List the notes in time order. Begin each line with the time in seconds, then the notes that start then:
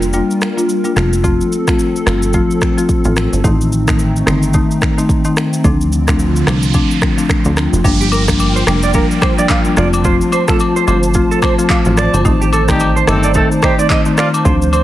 Already playing: F1 G3 F4 A#4
0.02 shaker
0.13 G3 A#3 D4 F4, shaker
0.31 shaker
0.41 finger snap, cross-stick, shaker
0.57 G3 A#3 D4 F4, shaker
0.69 shaker
0.84 G3 A#3 D4 F4, shaker
0.96 F1 F3 A3 C4 F4 A4, finger snap, cross-stick, shaker
1.13 shaker
1.24 F3 A3 C4 F4, kick, shaker
1.41 shaker
1.52 shaker
1.67 F3 A3 C4 F4, finger snap, kick, cross-stick, shaker
1.79 shaker
1.96 shaker
2.06 G1 F3 A3 C4 F4, finger snap, cross-stick, shaker
2.23 shaker
2.33 F3 A3 C4 F4, kick, shaker
2.51 shaker
2.61 finger snap, kick, cross-stick, shaker
2.77 F3 A3 C4 F4, shaker
2.89 kick, shaker
3.04 A1 F3 A3 C4 F4, shaker
3.16 finger snap, cross-stick, shaker
3.33 G1, shaker
3.44 A1 D#3 A3 C4 D#4, kick, shaker
3.61 shaker
3.72 shaker
3.87 D#3 A3 C4 D#4, finger snap, kick, cross-stick, shaker
3.99 shaker
4.16 shaker
4.27 G1 D#3 A3 C4 D#4, finger snap, cross-stick, shaker
4.43 shaker
4.54 D#3 A3 C4 D#4, kick, shaker
4.71 shaker
4.81 finger snap, kick, cross-stick, shaker
4.98 D#3 A3 C4 D#4, shaker
5.09 kick, shaker
5.25 D#3 A3 C4 D#4, shaker
5.37 finger snap, cross-stick, shaker
5.53 shaker
5.64 D2 D3 F3 A3 C4 D4 F4, kick, noise sweep, shaker
5.81 shaker
5.92 shaker
6.07 F3 A3 C4 D4, finger snap, kick, cross-stick, shaker
6.19 shaker
6.36 shaker
6.47 C2 F3 A3 C4 D4, finger snap, cross-stick, shaker
6.63 shaker
6.74 F3 A3 C4 D4, kick, shaker
6.91 shaker
7.02 finger snap, kick, cross-stick, shaker
7.18 F3 A3 C4 D4, shaker
7.29 finger snap, kick, cross-stick, shaker
7.45 D2 F3 A3 C4 D4, shaker
7.57 finger snap, cross-stick, shaker
7.73 F1, shaker
7.84 G1 F3 G3 A#3 D4 F4 A#4 G5, kick, downlifter, shaker
8.01 G4, shaker
8.12 A#4, high agogo, shaker
8.28 F3 G3 A#3 D4, finger snap, kick, cross-stick, shaker
8.39 high agogo, shaker
8.56 C5, shaker
8.67 F1 F3 G3 A#3 D4, finger snap, cross-stick, high agogo, shaker
8.83 D5, shaker
8.94 F3 G3 A#3 D4 A#4, kick, shaker
9.11 shaker
9.22 C5, finger snap, kick, cross-stick, high agogo, shaker
9.38 F3 G3 A#3 D4 D5, shaker
9.49 F5, kick, clap, high agogo, shaker
9.65 F3 G3 A#3 D4, shaker
9.77 F1 F3 A3 C4 F4 C5 D5 A5, finger snap, cross-stick, shaker
9.93 high agogo, shaker
10.04 F3 A3 C4 F4 C5, kick, shaker
10.21 shaker
10.32 C5, high agogo, shaker
10.48 F3 A3 C4 F4 A4, finger snap, kick, cross-stick, shaker
10.60 high agogo, shaker
10.76 C5, shaker
10.87 G1 F3 A3 C4 F4 C5, high agogo, shaker
11.03 shaker
11.14 F3 A3 C4 F4, kick, shaker
11.31 A4, shaker
11.42 C5, finger snap, kick, cross-stick, high agogo, shaker
11.58 F3 A3 C4 F4, shaker
11.70 F5, kick, clap, high agogo, shaker
11.85 A1 F3 A3 C4 F4, shaker
11.97 D5, finger snap, cross-stick, shaker
12.14 G1 C5, high agogo, shaker
12.25 A1 D#3 A3 C4 D#4, kick, shaker
12.41 G4, shaker
12.53 A4, high agogo, shaker
12.68 D#3 G3 A3 C4 D#4 G4, finger snap, kick, cross-stick, shaker
12.80 high agogo, shaker
12.96 C5, shaker
13.07 G1 D#3 A3 C4 D#4 A4, finger snap, cross-stick, high agogo, shaker
13.23 D5, shaker
13.34 D#3 A3 C4 D#4 A4, kick, shaker
13.52 shaker
13.62 G3 D#4 G4 C5, finger snap, kick, cross-stick, high agogo, shaker
13.78 D#3 A3 C4 D#4 D5, shaker
13.90 D#5, kick, clap, high agogo, shaker
14.05 D#3 A3 C4 D#4, shaker
14.17 F3 D4 F4 D5, finger snap, cross-stick, shaker
14.34 high agogo, shaker
14.45 D2 F3 A3 C4 D4 C5 F5, kick, shaker
14.62 shaker
14.73 C5, high agogo, shaker